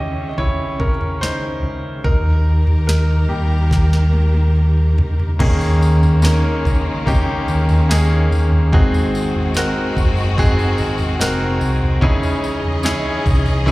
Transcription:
Already playing: C#2 C#3 D#3 E3 C#4 G4 G#4 D#5 E5
0.29 D#5
0.38 E4 C#5, kick, floor tom
0.80 C#4 A#4, kick
1.01 floor tom
1.21 D#4 C5, snare
1.63 C#2
2.04 D#2 D#3 D#4 G4 A#4, kick, floor tom
2.67 D#2, floor tom
2.87 D#4 A#4, snare
3.28 D#2 G3 A#3 D#4 G4, floor tom
3.71 kick, snare
3.93 snare
4.13 high tom
4.34 high tom
4.98 C#2, floor tom
5.20 floor tom
5.39 D#2 D#3 G#3 A#3 C#4 D#4 G#4, kick, floor tom, crash
5.61 tambourine
5.82 tambourine
6.03 floor tom, tambourine
6.22 A#3 C#4 D#4 A#4, snare, tambourine
6.65 C#2, kick, floor tom, tambourine
7.06 A#3 C#4 D#4 G4, kick, floor tom, tambourine
7.48 D#2, tambourine
7.69 floor tom, tambourine
7.89 A#3 C#4 D#4 G#4, snare, tambourine
8.31 D#2, tambourine
8.52 floor tom
8.72 G#1 G#2 G#3 C4 D#4 F#4 G#4, kick, floor tom
8.94 tambourine
9.15 tambourine
9.35 floor tom
9.54 C4 D#4 F#4 A#4, snare, tambourine
9.97 F#1, kick, floor tom, tambourine
10.17 tambourine
10.37 C4 D#4 F#4 G#4, kick, floor tom, tambourine
10.59 tambourine
10.78 G#1, tambourine
10.98 floor tom, tambourine
11.20 F1 C4 D#4 F#4 A#4, snare, tambourine
11.61 C2, tambourine
11.82 floor tom
12.01 C#2 C#3 E3 C#4 D#4 E4 G#4 D#5, kick, floor tom
12.23 tambourine
12.44 tambourine
12.64 floor tom
12.83 C#4 D#4 E4 G#4, snare, tambourine
13.26 C2, kick, floor tom, tambourine
13.46 tambourine
13.66 C#4 D#4 E4 G#4, kick, floor tom, tambourine

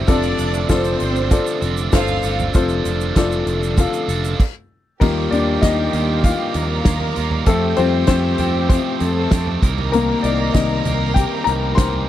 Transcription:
Already playing: G4 C5
0.07 F1 C3 D3 F3 A3 C4 D4 F4 A4 D5, kick, closed hi-hat, shaker
0.23 shaker
0.39 F1, closed hi-hat, shaker
0.54 shaker
0.69 F1 F3 C4 D4 F4 A4 C5 D5, kick, snare, closed hi-hat, shaker
0.84 shaker
1.00 G1, closed hi-hat
1.16 shaker
1.31 F3 C4 D4 F4 A4 D5, kick, closed hi-hat, shaker
1.47 shaker
1.62 F1 C4 D4 A4, closed hi-hat, shaker
1.77 shaker
1.92 G1 F3 C4 D4 F4 A4 C5 F5, kick, snare, closed hi-hat, shaker
2.08 floor tom, shaker
2.23 G1 C4 D4 A4, closed hi-hat, shaker
2.39 floor tom, shaker
2.52 F1 C3 F3 C4 D4 F4 A4 C5, kick, closed hi-hat, shaker
2.69 shaker
2.85 F1, closed hi-hat, shaker
3.01 shaker
3.16 F1 F3 C4 D4 F4 A4 D5, kick, snare, closed hi-hat, shaker
3.32 shaker
3.47 F1, closed hi-hat
3.63 shaker
3.77 F3 C4 D4 F4 A4 F5, kick, closed hi-hat, shaker
3.93 shaker
4.08 F1 C4 D4 A4, closed hi-hat, shaker
4.25 shaker
4.40 kick, crash
5.00 D#2 D#3 F3 G3 A#3 D#4 F4 G4 A#4 G5, kick, crash
5.31 D#2 A#3 D4 F4 G4 D5, closed hi-hat
5.62 D#2 F3 A#3 D#4 F4 G4 D#5, kick, snare, closed hi-hat
5.93 D#2 A#3 F4 G4, closed hi-hat
6.24 D#3 F3 A#3 F4 G4 F5, kick, closed hi-hat
6.54 D#2 A#4 A#5, closed hi-hat
6.85 D#2 F3 A#3 F4 G4, kick, snare, closed hi-hat
7.01 floor tom
7.16 D#2 A#3 F4 G4, closed hi-hat
7.31 floor tom
7.46 F2 F3 A3 C4 F4 G4 A4 G5, kick, closed hi-hat
7.76 F2 G3 A3 C4 F4 G4 C5, closed hi-hat
8.07 F2 A3 C4 F4 G4 C5, kick, snare, closed hi-hat
8.38 F2 C4 F4 G4, closed hi-hat, floor tom
8.69 F3 A3 C4 F4 G4 C5, kick, closed hi-hat
9.00 F2 A4 A5, closed hi-hat
9.31 F2 A3 C4 F4 G4, kick, snare, closed hi-hat
9.47 floor tom
9.62 C2 C3 D#3 G3 A#3 C4 D#4 A#4 A#5, kick, closed hi-hat
9.78 floor tom
9.92 A#3 A#4, closed hi-hat
10.22 C2 A#3 D#4 A#4 D5, closed hi-hat
10.53 C2 D#3 G3 A#3 D#4 D5 D#5, kick, snare, closed hi-hat
10.57 A#4
10.85 C2 A#3 D#4 A#4, closed hi-hat, floor tom
11.14 C3 G3 A#3 D#4 G4 A#4 G5, kick, closed hi-hat
11.44 C2 A#4 A#5, closed hi-hat
11.75 C2 G3 A#3 C5 C6, kick, snare, closed hi-hat
11.80 D#4 A#4
11.93 floor tom

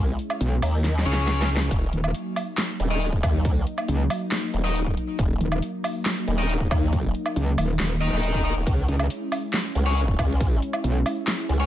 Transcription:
Already playing: C#2 G#3 C#4 E4
0.19 closed hi-hat
0.30 low woodblock
0.41 B1, closed hi-hat
0.62 D#2, open hi-hat, low woodblock
0.84 snare, closed hi-hat
0.99 snare
1.06 C#2 C#4 G#4 C#5, closed hi-hat
1.13 snare
1.28 snare, closed hi-hat
1.42 snare
1.49 closed hi-hat
1.57 snare
1.71 D#1 F#3 A#3 D#4, kick, closed hi-hat
1.93 D#1, closed hi-hat
2.04 low woodblock
2.15 closed hi-hat
2.36 open hi-hat, low woodblock
2.58 snare, clap, closed hi-hat
2.80 D#1, closed hi-hat
2.91 D#4 A#4 D#5
3.02 closed hi-hat
3.13 kick
3.23 D#2, kick, closed hi-hat, low woodblock
3.45 kick, closed hi-hat
3.67 closed hi-hat
3.78 low woodblock
3.88 C#2, closed hi-hat
4.10 open hi-hat, low woodblock
4.32 snare, clap, closed hi-hat
4.54 D#1, closed hi-hat
4.64 D#4 A#4 D#5
4.75 closed hi-hat
4.86 kick
4.97 closed hi-hat
5.19 D#1, kick, closed hi-hat
5.41 D#1, closed hi-hat
5.52 low woodblock
5.62 closed hi-hat
5.84 open hi-hat, low woodblock
6.06 snare, clap, closed hi-hat
6.28 D#1, closed hi-hat
6.38 D#4 A#4 D#5
6.49 closed hi-hat
6.60 kick
6.71 D#2, kick, closed hi-hat, low woodblock
6.93 kick, closed hi-hat
7.15 closed hi-hat
7.26 low woodblock
7.36 C#2, closed hi-hat
7.58 D#1, open hi-hat, low woodblock
7.80 D#1, snare, clap, closed hi-hat
8.01 D#4 A#4 D#5, closed hi-hat
8.13 D#1, snare
8.23 closed hi-hat
8.34 kick
8.45 D#4 A#4 D#5, closed hi-hat
8.56 D#1
8.67 C#2 G#3 C#4 E4, kick, closed hi-hat
8.88 C#2, closed hi-hat
8.99 low woodblock
9.10 closed hi-hat
9.32 open hi-hat, low woodblock
9.54 snare, clap, closed hi-hat
9.75 C#2, closed hi-hat
9.86 C#4 G#4 C#5
9.97 closed hi-hat
10.08 kick
10.19 C#2, kick, closed hi-hat, low woodblock
10.40 kick, closed hi-hat
10.62 closed hi-hat
10.73 low woodblock
10.84 B1, closed hi-hat
11.06 open hi-hat, low woodblock
11.28 snare, clap, closed hi-hat
11.49 C#2, closed hi-hat
11.60 C#4 G#4 C#5

